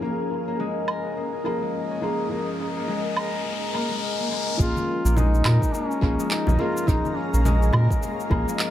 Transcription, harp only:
0.02 A#3
0.48 A#3
0.60 G#3
0.88 A#4
1.17 A#3
1.45 A#3
1.62 G#3
1.91 C#4
2.03 A#3
2.31 A#3
2.77 A#3
2.88 G#3
3.16 A#4
3.45 A#3
3.74 A#3
3.91 G#3
4.19 A#3
4.31 A#3
4.59 A#3
5.05 A#3
5.16 G#3
5.45 A#4
5.74 A#3
6.02 A#3
6.19 G#3
6.48 C#4
6.59 A#3
6.88 A#3
7.33 A#3
7.45 G#3
7.74 A#4
8.02 A#3
8.31 A#3
8.48 G#3

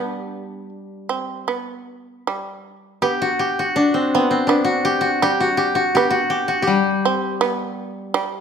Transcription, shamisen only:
Already playing: B3
1.09 C4
1.48 B3
2.27 G3
3.02 B3
4.15 C4
4.49 B3
5.22 G3
5.97 B3
7.05 C4
7.41 B3
8.14 G3

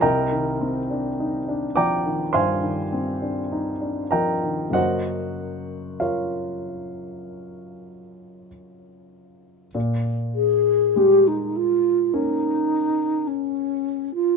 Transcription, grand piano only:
0.01 C2 A#4 D#5 G5 A#5
0.32 D#3
0.61 C4
0.91 D4
1.20 D#4
1.48 D4
1.76 F3 D5 G5 A#5 D6
2.06 D#3
2.33 G2 C5 F5 G#5 C6
2.63 D#3
2.93 C4
3.22 D4
3.52 D#4
3.81 D4
4.11 F3 A#4 D#5 G5 A#5
4.43 D#3
4.70 F#2 C#3 F#3 A#3 C#4 F#5
4.74 F#4 C5 D#5
6.00 F4 A#4 C#5 F5
9.75 A#2
10.96 G#3
12.13 A#3 C#4

